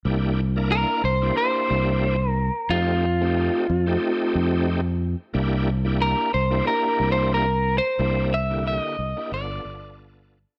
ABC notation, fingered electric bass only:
X:1
M:4/4
L:1/16
Q:"Swing 16ths" 1/4=91
K:Cmix
V:1 name="Fingered electric bass" clef=bass
C,,6 C,,2 z2 C,,6 | F,,6 F,,2 z2 F,,6 | C,,6 C,,2 z2 C,,6 | C,,6 C,, z G,,,2 G,,,6 |]